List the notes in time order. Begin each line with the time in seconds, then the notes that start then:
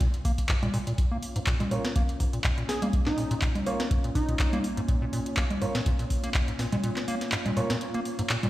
0.01 A#2, kick, closed hi-hat
0.14 closed hi-hat
0.25 A#3, kick, open hi-hat
0.38 kick, closed hi-hat
0.49 G#2, kick, clap, closed hi-hat
0.63 A#2, closed hi-hat, low conga
0.74 A#2, open hi-hat
0.87 A#2, closed hi-hat
0.98 A#3 C#4 F4 C#5, kick, closed hi-hat
1.11 A#3
1.22 open hi-hat
1.36 G#2, closed hi-hat
1.47 A#2, kick, clap, closed hi-hat
1.60 A#2, closed hi-hat, low conga
1.71 A#2 A#3 F4 C#5, open hi-hat
1.85 snare, closed hi-hat
1.96 A#3, kick, closed hi-hat
2.09 closed hi-hat
2.20 G#2, kick, open hi-hat
2.33 A#2, closed hi-hat
2.44 A#2, kick, clap, closed hi-hat
2.58 A#2, closed hi-hat
2.69 G#4, snare, open hi-hat
2.82 A#3, closed hi-hat, low conga
2.93 kick, closed hi-hat
3.06 G#2 D#4, snare, clap
3.18 A#2, open hi-hat
3.31 A#2, closed hi-hat
3.42 A#2, kick, clap, closed hi-hat
3.55 closed hi-hat, low conga
3.66 A#3 F4 C#5, open hi-hat
3.80 snare, closed hi-hat
3.91 G#2, kick, closed hi-hat
4.04 A#2, closed hi-hat
4.15 A#2 D#4, kick, open hi-hat
4.29 A#2, kick, closed hi-hat
4.39 kick, clap, closed hi-hat
4.53 A#3, closed hi-hat, low conga
4.64 open hi-hat
4.77 G#2, closed hi-hat
4.88 A#2, kick, closed hi-hat
5.02 A#2
5.13 A#2, open hi-hat
5.26 closed hi-hat
5.37 A#3, kick, clap, closed hi-hat
5.51 closed hi-hat, low conga
5.62 G#2 A#3 F4 C#5, open hi-hat
5.75 A#2, snare, closed hi-hat
5.86 A#2, kick, closed hi-hat
5.99 A#2, closed hi-hat
6.10 kick, open hi-hat
6.24 A#3, closed hi-hat
6.34 kick, clap, closed hi-hat
6.48 G#2, closed hi-hat
6.59 A#2, snare, open hi-hat
6.72 A#2, closed hi-hat, low conga
6.84 A#2, closed hi-hat
6.96 snare, clap, closed hi-hat
7.08 A#3, open hi-hat
7.21 snare, closed hi-hat
7.32 G#2, clap, closed hi-hat
7.46 A#2, closed hi-hat, low conga
7.57 A#2 A#3 F4 C#5, open hi-hat
7.70 A#2, snare, closed hi-hat
7.81 closed hi-hat
7.94 A#3, closed hi-hat
8.05 open hi-hat
8.19 G#2, closed hi-hat
8.29 A#2, clap, closed hi-hat
8.43 A#2, closed hi-hat, low conga